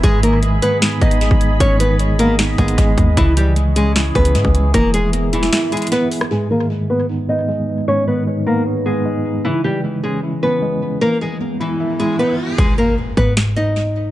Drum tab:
HH |x---x---x---x---x---x-x-x---x---|x---x---x---x---x---x-x-x---x---|x---x---x---x---x---x-x-x---x---|x---x---x---x---x---xxxxx---o---|
SD |----------------o---------------|----------------o---------------|----------------o---------------|--------------o-o-------------r-|
BD |o-------------------o-----o-----|o-------------------o---o---o---|o-------------------o-----o-----|o-------------------------------|

HH |--------------------------------|--------------------------------|--------------------------------|--------------------------------|
SD |--------------------------------|--------------------------------|--------------------------------|--------------------------------|
BD |--------------------------------|--------------------------------|--------------------------------|--------------------------------|

HH |--------------------------------|
SD |----------------o---------------|
BD |o-----------o-------------------|